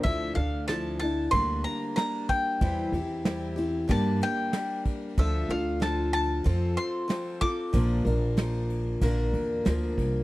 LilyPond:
<<
  \new Staff \with { instrumentName = "Mandolin" } { \time 4/4 \key d \minor \tempo 4 = 94 e''8 f''8 a''8 a''8 c'''8 bes''8 bes''8 g''8~ | g''2 a''8 g''4 r8 | e''8 f''8 a''8 a''4 c'''4 d'''8~ | d'''2. r4 | }
  \new Staff \with { instrumentName = "Steel-string acoustic guitar" } { \time 4/4 \key d \minor <d f d' e' a'>8 <d' a'>8 <f d' e' a'>8 <d' e' a'>8 <d g bes d'>4 <g bes d'>4 | <e g c' e' g'>8 <c' e' g'>8 <g c' e' g'>8 <c' e' g'>8 <g, d g bes d' g'>4 <g bes d' g'>4 | <d f d' f' a'>8 <d' f' a'>8 <f d' f' a'>4 <f c' f' a'>4 <f c' f' a'>8 <c' f' a'>8 | <bes, d f bes d' bes'>8 <f bes d' bes'>8 <f bes d' bes'>4 <bes, d bes d' bes'>4 <f bes d' bes'>4 | }
  \new Staff \with { instrumentName = "Upright bass" } { \clef bass \time 4/4 \key d \minor d,8 d,4. d,8 r4. | e,8 e,4. g,8 r4. | d,8 d,4. f,8 r4. | bes,,8 bes,,4. bes,,8 e,8 d,8 c,8 | }
  \new DrumStaff \with { instrumentName = "Drums" } \drummode { \time 4/4 <bd cymr>8 cymr8 <cymr sn>8 cymr8 <bd cymr>8 cymr8 <cymr sn>8 <bd cymr>8 | <bd cymr>8 cymr8 <cymr sn>8 cymr8 <bd cymr>8 cymr8 <cymr sn>8 <bd cymr>8 | <bd cymr>8 cymr8 <cymr sn>8 cymr8 <bd cymr>8 cymr8 <cymr sn>8 <bd cymr>8 | <bd cymr>8 cymr8 <cymr sn>8 cymr8 <bd cymr>8 cymr8 <cymr sn>8 <bd cymr>8 | }
>>